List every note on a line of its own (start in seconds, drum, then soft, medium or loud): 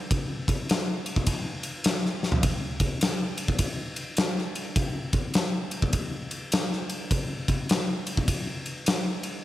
0.11 kick loud
0.11 ride medium
0.48 kick medium
0.48 ride medium
0.69 snare loud
0.69 ride medium
1.06 ride medium
1.16 kick medium
1.27 kick medium
1.27 ride medium
1.63 ride medium
1.84 snare loud
1.84 ride loud
2.05 snare soft
2.23 snare medium
2.32 floor tom medium
2.43 kick loud
2.43 ride medium
2.80 kick medium
2.80 ride medium
3.01 snare loud
3.01 ride medium
3.38 ride medium
3.48 kick medium
3.59 kick loud
3.59 ride loud
3.96 ride medium
4.17 snare loud
4.17 ride medium
4.38 snare soft
4.55 ride medium
4.76 kick loud
4.76 ride medium
5.13 kick medium
5.13 ride medium
5.34 snare loud
5.34 ride medium
5.71 ride medium
5.82 kick medium
5.93 kick loud
5.93 ride medium
6.31 ride medium
6.52 snare loud
6.52 ride medium
6.73 snare soft
6.90 ride medium
7.11 kick loud
7.11 ride medium
7.48 kick medium
7.48 ride medium
7.69 snare loud
7.69 ride medium
8.07 ride medium
8.17 kick medium
8.28 kick loud
8.28 ride loud
8.66 ride medium
8.86 snare loud
8.86 ride loud
9.23 ride medium